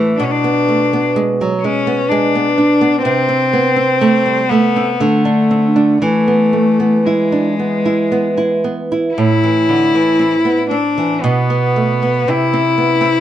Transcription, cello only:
Already playing: A3
0.17 D4
0.25 C#4
0.31 D4
1.61 C#4
2.08 D4
3.02 C4
4.49 B3
4.99 A3
6.03 A3
7.05 G#3
9.14 E4
10.70 D4
11.22 B3
12.29 E4

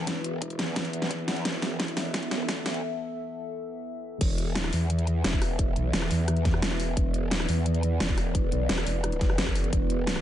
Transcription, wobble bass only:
0.07 E1
0.59 E2
0.76 E2
1.45 E1
1.97 E1
2.49 D2
4.21 E1
4.73 E2
5.24 E1
5.59 E1
5.76 B1
5.93 E1
6.11 E2
6.62 E1
6.97 E1
7.49 E2
8.00 E1
8.35 E1
8.52 B1
8.69 E1
8.87 E1
9.21 F#1
9.73 E1

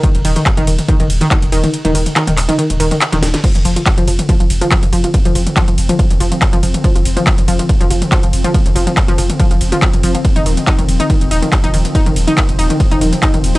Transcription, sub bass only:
0.15 D#1
0.25 D#1
0.57 D#1
0.67 D#1
1.00 D#1
1.10 D#1
1.42 D#1
1.52 D#1
1.85 D#1
1.95 D#1
2.27 D#1
2.37 D#1
2.70 D#1
2.80 D#1
3.13 D#1
3.22 D#1
3.55 F1
3.65 F1
3.98 F1
4.08 F1
4.40 F1
4.50 F1
4.83 F1
4.93 F1
5.25 F1
5.35 F1
5.68 F1
5.78 F1
6.10 F1
6.20 F1
6.53 F1
6.63 F1
6.95 F1
7.05 F1
7.38 F1
7.48 F1
7.81 F1
7.91 F1
8.23 F1
8.33 F1
8.66 F1
8.76 F1
9.08 F1
9.18 F1
9.51 F1
9.61 F1
9.93 F1
10.03 F1
10.36 D#1
10.46 D#1
10.78 D#1
10.88 D#1
11.21 D#1
11.31 D#1
11.64 D#1
11.74 D#1
12.06 D#1
12.16 D#1
12.49 D#1
12.59 D#1
12.91 D#1
13.01 D#1
13.34 D#1
13.44 D#1

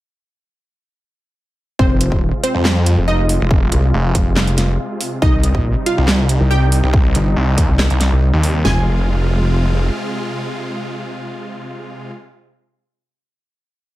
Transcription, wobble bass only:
1.79 F1
2.12 D#1
2.97 F1
3.72 C2
4.15 F1
5.22 C2
5.55 A#1
6.40 C2
7.15 G1
7.69 C2
8.12 C2
8.65 F1

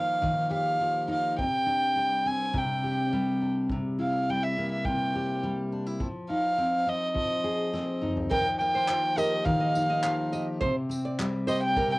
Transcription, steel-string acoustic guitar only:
Already playing: D#3 F3 A#3 D#4
0.22 D#3
0.50 G4
0.80 F3
1.08 D#4
1.39 C3
1.66 D4
1.96 G3
2.26 C4
2.53 C3
2.84 G4
3.13 G3
3.42 D4
3.72 C3
3.99 E4
4.29 G3
4.58 A#3
4.87 C3
5.16 G4
5.43 G3
5.72 D4
5.86 E4
6.00 F3
6.30 D#4
6.58 C4
6.87 C4
7.14 F3
7.44 G#4
7.74 C4
8.01 D#4
8.32 D#3
8.61 A#3
8.90 F3
9.17 G4
9.45 D#3
9.76 D#4
10.05 F3
10.33 G4
10.62 C3
10.89 C4
11.19 G3
11.48 G4
11.78 C3

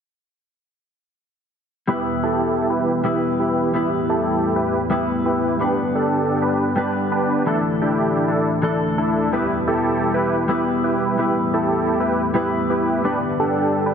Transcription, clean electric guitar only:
1.87 G3 B3 E4 B4
3.04 G3 B3 E4 B4
3.74 G3 B3 E4 B4
4.90 G3 B3 E4 B4
5.59 G3 B3 D4 B4
6.76 G3 B3 D4 B4
7.45 E3 A3 D4 A4
8.62 E3 A3 D4 A4
9.32 G3 B3 E4 B4
10.48 G3 B3 E4 B4
11.18 G3 B3 E4 B4
12.34 G3 B3 E4 B4
13.04 G3 B3 D4 B4

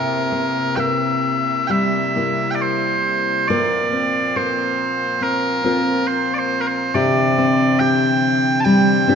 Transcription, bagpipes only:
Already playing: A#4
0.76 E5 G5
1.67 E5 G5
2.51 D5 G5
2.62 C5
3.48 D5
4.36 C5
5.23 A#4
6.07 C5
6.34 D5
6.38 C5
6.61 A#4
6.67 C5
6.95 D5
7.79 G5
8.60 A5
8.64 G5

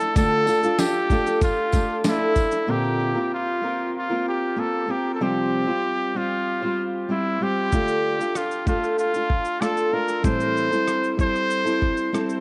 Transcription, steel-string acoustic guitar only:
Already playing: A3 D4 E4 A4
0.15 D3 A3 D4 F4 A4
0.47 A3 D4 F4 A4
0.63 D4 F4 A4
1.10 A3 D4 F4 A4
1.73 A3 D4 F4 A4
2.05 A3 D4 A4
2.67 A#2 D3 A#3 C4 F4 A#4
3.15 A#3 C4 F4 A#4
3.62 A#3 C4 F4 A#4
4.10 A#3 C4 F4 A#4
4.56 A#3 C4 F4
4.88 A#3 C4 F4 A#4
5.20 C3 F3 G3 C4 F4 C5
5.67 G3 C4 F4 C5
6.15 G3 C4 F4 C5
6.62 G3 C4 F4 C5
7.09 G3 C4 C5
7.40 G3 C4 F4 C5
7.72 D3 A3 D4 F4 A4
8.19 D4 F4 A4
8.66 A3 D4 F4 A4
9.13 D4 F4 A4
9.61 A3 D4 F4 A4
9.93 D4 F4
10.23 A2 E3 G3 C4 E4 A4
10.71 G3 C4 E4 A4
11.17 G3 C4 E4 A4
11.65 G3 C4 E4 A4
12.12 G3 C4 E4 A4

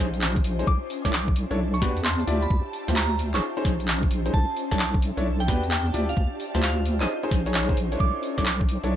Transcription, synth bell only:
0.67 D6
1.05 D6
1.74 C#6
2.05 C6
2.42 B5
2.96 A#5
3.34 C#6
4.34 A5
4.72 A5
5.40 G5
5.71 G5
6.09 F5
6.63 F5
7.01 D#5
8.00 D6
8.38 D6

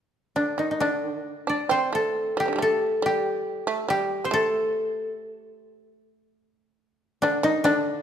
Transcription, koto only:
0.36 D4
0.59 D#4
0.71 D#4
0.80 D4
1.49 D5
1.71 C5
1.95 A4
2.40 G4
2.62 A4
3.06 G4
3.90 G4
4.25 C5
4.33 A4
7.22 D4
7.44 D#4
7.64 D4

